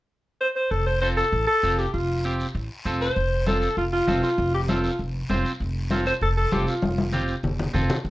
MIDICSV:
0, 0, Header, 1, 5, 480
1, 0, Start_track
1, 0, Key_signature, -1, "major"
1, 0, Tempo, 305499
1, 1125, Time_signature, 4, 2, 24, 8
1, 12727, End_track
2, 0, Start_track
2, 0, Title_t, "Alto saxophone"
2, 0, Program_c, 0, 65
2, 640, Note_on_c, 0, 72, 89
2, 750, Note_off_c, 0, 72, 0
2, 874, Note_on_c, 0, 72, 88
2, 1115, Note_on_c, 0, 69, 88
2, 1139, Note_off_c, 0, 72, 0
2, 1344, Note_off_c, 0, 69, 0
2, 1354, Note_on_c, 0, 72, 85
2, 1582, Note_off_c, 0, 72, 0
2, 1592, Note_on_c, 0, 72, 83
2, 1703, Note_off_c, 0, 72, 0
2, 1835, Note_on_c, 0, 69, 81
2, 2286, Note_off_c, 0, 69, 0
2, 2307, Note_on_c, 0, 69, 93
2, 2797, Note_on_c, 0, 67, 81
2, 2821, Note_off_c, 0, 69, 0
2, 3027, Note_off_c, 0, 67, 0
2, 3037, Note_on_c, 0, 65, 70
2, 3710, Note_off_c, 0, 65, 0
2, 4729, Note_on_c, 0, 72, 94
2, 5396, Note_off_c, 0, 72, 0
2, 5455, Note_on_c, 0, 69, 86
2, 5896, Note_off_c, 0, 69, 0
2, 5935, Note_on_c, 0, 65, 76
2, 6040, Note_off_c, 0, 65, 0
2, 6169, Note_on_c, 0, 65, 86
2, 6613, Note_off_c, 0, 65, 0
2, 6650, Note_on_c, 0, 65, 77
2, 7093, Note_off_c, 0, 65, 0
2, 7135, Note_on_c, 0, 67, 81
2, 7240, Note_off_c, 0, 67, 0
2, 7372, Note_on_c, 0, 65, 72
2, 7815, Note_off_c, 0, 65, 0
2, 9292, Note_on_c, 0, 65, 84
2, 9511, Note_off_c, 0, 65, 0
2, 9532, Note_on_c, 0, 72, 91
2, 9638, Note_off_c, 0, 72, 0
2, 9777, Note_on_c, 0, 69, 86
2, 9882, Note_off_c, 0, 69, 0
2, 10007, Note_on_c, 0, 69, 92
2, 10245, Note_on_c, 0, 67, 85
2, 10269, Note_off_c, 0, 69, 0
2, 10480, Note_off_c, 0, 67, 0
2, 10489, Note_on_c, 0, 65, 71
2, 11156, Note_off_c, 0, 65, 0
2, 12727, End_track
3, 0, Start_track
3, 0, Title_t, "Clean electric guitar"
3, 0, Program_c, 1, 27
3, 1599, Note_on_c, 1, 60, 60
3, 1611, Note_on_c, 1, 65, 59
3, 1615, Note_on_c, 1, 69, 67
3, 1939, Note_off_c, 1, 60, 0
3, 1942, Note_off_c, 1, 65, 0
3, 1946, Note_off_c, 1, 69, 0
3, 2562, Note_on_c, 1, 60, 60
3, 2570, Note_on_c, 1, 65, 61
3, 2578, Note_on_c, 1, 69, 68
3, 2900, Note_off_c, 1, 60, 0
3, 2903, Note_off_c, 1, 65, 0
3, 2908, Note_off_c, 1, 69, 0
3, 3532, Note_on_c, 1, 60, 69
3, 3544, Note_on_c, 1, 65, 50
3, 3546, Note_on_c, 1, 67, 73
3, 3865, Note_off_c, 1, 60, 0
3, 3868, Note_off_c, 1, 65, 0
3, 3871, Note_off_c, 1, 67, 0
3, 4486, Note_on_c, 1, 60, 80
3, 4492, Note_on_c, 1, 65, 77
3, 4506, Note_on_c, 1, 69, 79
3, 4821, Note_off_c, 1, 60, 0
3, 4825, Note_off_c, 1, 65, 0
3, 4828, Note_off_c, 1, 69, 0
3, 5444, Note_on_c, 1, 60, 68
3, 5451, Note_on_c, 1, 65, 62
3, 5459, Note_on_c, 1, 69, 74
3, 5780, Note_off_c, 1, 60, 0
3, 5784, Note_off_c, 1, 65, 0
3, 5788, Note_off_c, 1, 69, 0
3, 6401, Note_on_c, 1, 60, 67
3, 6414, Note_on_c, 1, 65, 57
3, 6414, Note_on_c, 1, 69, 73
3, 6739, Note_off_c, 1, 60, 0
3, 6742, Note_off_c, 1, 65, 0
3, 6745, Note_off_c, 1, 69, 0
3, 7364, Note_on_c, 1, 60, 69
3, 7376, Note_on_c, 1, 65, 53
3, 7376, Note_on_c, 1, 69, 74
3, 7701, Note_off_c, 1, 60, 0
3, 7703, Note_off_c, 1, 65, 0
3, 7706, Note_off_c, 1, 69, 0
3, 8320, Note_on_c, 1, 60, 81
3, 8326, Note_on_c, 1, 65, 74
3, 8338, Note_on_c, 1, 72, 75
3, 8658, Note_off_c, 1, 60, 0
3, 8661, Note_off_c, 1, 65, 0
3, 8664, Note_off_c, 1, 72, 0
3, 9284, Note_on_c, 1, 60, 70
3, 9287, Note_on_c, 1, 65, 71
3, 9300, Note_on_c, 1, 69, 59
3, 9620, Note_off_c, 1, 60, 0
3, 9624, Note_off_c, 1, 65, 0
3, 9625, Note_off_c, 1, 69, 0
3, 10244, Note_on_c, 1, 60, 68
3, 10248, Note_on_c, 1, 65, 65
3, 10262, Note_on_c, 1, 69, 64
3, 10580, Note_off_c, 1, 60, 0
3, 10584, Note_off_c, 1, 65, 0
3, 10586, Note_off_c, 1, 69, 0
3, 11197, Note_on_c, 1, 60, 84
3, 11204, Note_on_c, 1, 65, 72
3, 11216, Note_on_c, 1, 67, 72
3, 11537, Note_off_c, 1, 60, 0
3, 11541, Note_off_c, 1, 65, 0
3, 11544, Note_off_c, 1, 67, 0
3, 12153, Note_on_c, 1, 60, 81
3, 12161, Note_on_c, 1, 65, 67
3, 12171, Note_on_c, 1, 69, 85
3, 12494, Note_off_c, 1, 60, 0
3, 12499, Note_off_c, 1, 65, 0
3, 12504, Note_off_c, 1, 69, 0
3, 12727, End_track
4, 0, Start_track
4, 0, Title_t, "Upright bass"
4, 0, Program_c, 2, 32
4, 1117, Note_on_c, 2, 29, 79
4, 1889, Note_off_c, 2, 29, 0
4, 2081, Note_on_c, 2, 33, 87
4, 2274, Note_off_c, 2, 33, 0
4, 2565, Note_on_c, 2, 29, 81
4, 2949, Note_off_c, 2, 29, 0
4, 3044, Note_on_c, 2, 29, 85
4, 3812, Note_off_c, 2, 29, 0
4, 4001, Note_on_c, 2, 33, 88
4, 4194, Note_off_c, 2, 33, 0
4, 4484, Note_on_c, 2, 29, 80
4, 4868, Note_off_c, 2, 29, 0
4, 4972, Note_on_c, 2, 29, 85
4, 5737, Note_off_c, 2, 29, 0
4, 5924, Note_on_c, 2, 29, 79
4, 6308, Note_off_c, 2, 29, 0
4, 6404, Note_on_c, 2, 29, 93
4, 6596, Note_off_c, 2, 29, 0
4, 6883, Note_on_c, 2, 29, 92
4, 7651, Note_off_c, 2, 29, 0
4, 7844, Note_on_c, 2, 29, 76
4, 8228, Note_off_c, 2, 29, 0
4, 8323, Note_on_c, 2, 29, 87
4, 8515, Note_off_c, 2, 29, 0
4, 8802, Note_on_c, 2, 29, 84
4, 9571, Note_off_c, 2, 29, 0
4, 9765, Note_on_c, 2, 29, 83
4, 10148, Note_off_c, 2, 29, 0
4, 10244, Note_on_c, 2, 29, 97
4, 10436, Note_off_c, 2, 29, 0
4, 10725, Note_on_c, 2, 29, 86
4, 11493, Note_off_c, 2, 29, 0
4, 11682, Note_on_c, 2, 29, 79
4, 12067, Note_off_c, 2, 29, 0
4, 12166, Note_on_c, 2, 29, 90
4, 12357, Note_off_c, 2, 29, 0
4, 12643, Note_on_c, 2, 38, 88
4, 12727, Note_off_c, 2, 38, 0
4, 12727, End_track
5, 0, Start_track
5, 0, Title_t, "Drums"
5, 1127, Note_on_c, 9, 74, 60
5, 1285, Note_off_c, 9, 74, 0
5, 1602, Note_on_c, 9, 73, 61
5, 1759, Note_off_c, 9, 73, 0
5, 1844, Note_on_c, 9, 73, 59
5, 2001, Note_off_c, 9, 73, 0
5, 2082, Note_on_c, 9, 74, 64
5, 2239, Note_off_c, 9, 74, 0
5, 2567, Note_on_c, 9, 73, 58
5, 2724, Note_off_c, 9, 73, 0
5, 2807, Note_on_c, 9, 73, 59
5, 2964, Note_off_c, 9, 73, 0
5, 3049, Note_on_c, 9, 74, 65
5, 3207, Note_off_c, 9, 74, 0
5, 3525, Note_on_c, 9, 73, 67
5, 3682, Note_off_c, 9, 73, 0
5, 3770, Note_on_c, 9, 73, 61
5, 3927, Note_off_c, 9, 73, 0
5, 4011, Note_on_c, 9, 74, 60
5, 4169, Note_off_c, 9, 74, 0
5, 4490, Note_on_c, 9, 73, 64
5, 4647, Note_off_c, 9, 73, 0
5, 4731, Note_on_c, 9, 73, 63
5, 4888, Note_off_c, 9, 73, 0
5, 4967, Note_on_c, 9, 63, 34
5, 4968, Note_on_c, 9, 74, 69
5, 5124, Note_off_c, 9, 63, 0
5, 5125, Note_off_c, 9, 74, 0
5, 5445, Note_on_c, 9, 73, 68
5, 5449, Note_on_c, 9, 63, 76
5, 5602, Note_off_c, 9, 73, 0
5, 5606, Note_off_c, 9, 63, 0
5, 5686, Note_on_c, 9, 73, 60
5, 5843, Note_off_c, 9, 73, 0
5, 5924, Note_on_c, 9, 74, 62
5, 5925, Note_on_c, 9, 63, 32
5, 6081, Note_off_c, 9, 74, 0
5, 6082, Note_off_c, 9, 63, 0
5, 6406, Note_on_c, 9, 73, 59
5, 6409, Note_on_c, 9, 63, 67
5, 6563, Note_off_c, 9, 73, 0
5, 6566, Note_off_c, 9, 63, 0
5, 6647, Note_on_c, 9, 73, 58
5, 6804, Note_off_c, 9, 73, 0
5, 6883, Note_on_c, 9, 74, 64
5, 6886, Note_on_c, 9, 63, 31
5, 7040, Note_off_c, 9, 74, 0
5, 7043, Note_off_c, 9, 63, 0
5, 7360, Note_on_c, 9, 73, 64
5, 7365, Note_on_c, 9, 63, 78
5, 7517, Note_off_c, 9, 73, 0
5, 7522, Note_off_c, 9, 63, 0
5, 7603, Note_on_c, 9, 73, 64
5, 7760, Note_off_c, 9, 73, 0
5, 7842, Note_on_c, 9, 74, 62
5, 7847, Note_on_c, 9, 63, 32
5, 8000, Note_off_c, 9, 74, 0
5, 8004, Note_off_c, 9, 63, 0
5, 8322, Note_on_c, 9, 63, 69
5, 8323, Note_on_c, 9, 73, 59
5, 8479, Note_off_c, 9, 63, 0
5, 8480, Note_off_c, 9, 73, 0
5, 8562, Note_on_c, 9, 73, 59
5, 8719, Note_off_c, 9, 73, 0
5, 8802, Note_on_c, 9, 63, 33
5, 8806, Note_on_c, 9, 74, 67
5, 8960, Note_off_c, 9, 63, 0
5, 8963, Note_off_c, 9, 74, 0
5, 9277, Note_on_c, 9, 63, 77
5, 9281, Note_on_c, 9, 73, 68
5, 9434, Note_off_c, 9, 63, 0
5, 9438, Note_off_c, 9, 73, 0
5, 9522, Note_on_c, 9, 73, 67
5, 9679, Note_off_c, 9, 73, 0
5, 9761, Note_on_c, 9, 74, 64
5, 9763, Note_on_c, 9, 63, 33
5, 9919, Note_off_c, 9, 74, 0
5, 9920, Note_off_c, 9, 63, 0
5, 10240, Note_on_c, 9, 73, 61
5, 10247, Note_on_c, 9, 63, 74
5, 10398, Note_off_c, 9, 73, 0
5, 10404, Note_off_c, 9, 63, 0
5, 10481, Note_on_c, 9, 73, 62
5, 10639, Note_off_c, 9, 73, 0
5, 10715, Note_on_c, 9, 74, 67
5, 10721, Note_on_c, 9, 63, 89
5, 10872, Note_off_c, 9, 74, 0
5, 10878, Note_off_c, 9, 63, 0
5, 10969, Note_on_c, 9, 63, 77
5, 11126, Note_off_c, 9, 63, 0
5, 11199, Note_on_c, 9, 73, 62
5, 11209, Note_on_c, 9, 64, 68
5, 11356, Note_off_c, 9, 73, 0
5, 11366, Note_off_c, 9, 64, 0
5, 11436, Note_on_c, 9, 73, 64
5, 11593, Note_off_c, 9, 73, 0
5, 11677, Note_on_c, 9, 74, 57
5, 11688, Note_on_c, 9, 64, 86
5, 11834, Note_off_c, 9, 74, 0
5, 11846, Note_off_c, 9, 64, 0
5, 11932, Note_on_c, 9, 64, 71
5, 12089, Note_off_c, 9, 64, 0
5, 12157, Note_on_c, 9, 73, 64
5, 12171, Note_on_c, 9, 64, 71
5, 12314, Note_off_c, 9, 73, 0
5, 12328, Note_off_c, 9, 64, 0
5, 12402, Note_on_c, 9, 73, 60
5, 12410, Note_on_c, 9, 64, 77
5, 12559, Note_off_c, 9, 73, 0
5, 12567, Note_off_c, 9, 64, 0
5, 12644, Note_on_c, 9, 74, 64
5, 12650, Note_on_c, 9, 63, 31
5, 12727, Note_off_c, 9, 63, 0
5, 12727, Note_off_c, 9, 74, 0
5, 12727, End_track
0, 0, End_of_file